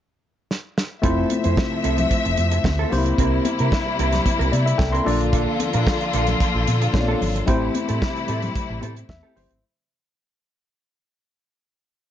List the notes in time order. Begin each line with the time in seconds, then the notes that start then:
0.51 snare
0.78 snare
1.02 F1 C3 F3 A3 C4 E4 F4 A4 C5 E5, kick, closed hi-hat, muted conga
1.30 muted clean electric guitar stroke, closed hi-hat, high conga
1.44 F2 C4 E4 C5, closed hi-hat
1.57 muted clean electric guitar stroke, kick, snare, muted conga
1.72 muted clean electric guitar stroke
1.84 C2 C4 E4 A4, closed hi-hat, muted conga
1.98 muted clean electric guitar stroke, closed hi-hat, low conga
2.11 muted clean electric guitar stroke, kick, closed hi-hat, muted conga
2.25 F1, muted clean electric guitar stroke, closed hi-hat
2.37 F2, closed hi-hat, high conga
2.51 muted clean electric guitar stroke, closed hi-hat
2.64 D2, muted clean electric guitar stroke, kick, snare, muted conga, high conga
2.79 C4 E4 A4
2.90 C2 C3 G3 A#3 C4 D4 E4 G4 C5, muted clean electric guitar stroke, open hi-hat, low conga
2.98 E4
3.06 muted clean electric guitar stroke, closed hi-hat
3.18 C2 C4 E4 A#4, kick, closed hi-hat
3.45 muted clean electric guitar stroke, closed hi-hat, muted conga, high conga
3.59 C3 C4 E4 A#4, closed hi-hat
3.72 kick, snare
3.87 muted clean electric guitar stroke
3.99 C2 C4 E4 A#4, closed hi-hat, muted conga
4.12 muted clean electric guitar stroke, snare, closed hi-hat, low conga
4.26 muted clean electric guitar stroke, kick, closed hi-hat, muted conga
4.39 C2 C4 E4 A#4, closed hi-hat
4.52 C3 D5, muted clean electric guitar stroke, closed hi-hat, high conga
4.66 E5, muted clean electric guitar stroke, closed hi-hat
4.78 C2 A4 G5, muted clean electric guitar stroke, kick, snare, muted conga, high conga
4.92 C4 E4 A#4 C6, closed hi-hat
5.04 A#1 D3 F3 A#3 D4 F4 A4 A#4 D5, open hi-hat, muted conga, low conga
5.20 muted clean electric guitar stroke, closed hi-hat
5.32 A#3 D4 A4, kick, closed hi-hat, muted conga
5.60 muted clean electric guitar stroke, closed hi-hat, muted conga, high conga
5.73 A#2 A#3 D4 A#4, closed hi-hat
5.86 muted clean electric guitar stroke, kick, snare, muted conga
6.01 muted clean electric guitar stroke, closed hi-hat
6.13 A#1 A#3 D4 A4, closed hi-hat, muted conga
6.27 muted clean electric guitar stroke, closed hi-hat, low conga
6.40 muted clean electric guitar stroke, kick, closed hi-hat
6.55 A#1, muted clean electric guitar stroke
6.67 A#2, closed hi-hat, muted conga, high conga
6.81 muted clean electric guitar stroke, closed hi-hat
6.93 A#1 A#3 D4 F4 A4 C#5, muted clean electric guitar stroke, kick, snare, muted conga, high conga
7.01 D5
7.08 A#3 D4 A4
7.21 G#1, muted clean electric guitar stroke, open hi-hat, muted conga, low conga
7.36 muted clean electric guitar stroke, closed hi-hat
7.46 A1 C3 E3 G3 A3 C4 E4 G4 A4 C5, kick, closed hi-hat, muted conga
7.75 muted clean electric guitar stroke, closed hi-hat, muted conga, high conga
7.88 A2 C4 G4 A4, closed hi-hat
8.02 muted clean electric guitar stroke, kick, snare, muted conga
8.16 muted clean electric guitar stroke, closed hi-hat
8.28 A2 C4 G4 A4, closed hi-hat, muted conga
8.42 muted clean electric guitar stroke, closed hi-hat, low conga
8.56 kick, closed hi-hat
8.69 A1, muted clean electric guitar stroke
8.81 A2 C4 G4 A4, closed hi-hat, high conga
8.96 muted clean electric guitar stroke, closed hi-hat
9.09 E2 E5, muted clean electric guitar stroke, kick, snare, high conga
9.23 C4 G4 A4
9.36 G1 C4 G4 C5, open hi-hat, low conga
9.50 G#1, muted clean electric guitar stroke, closed hi-hat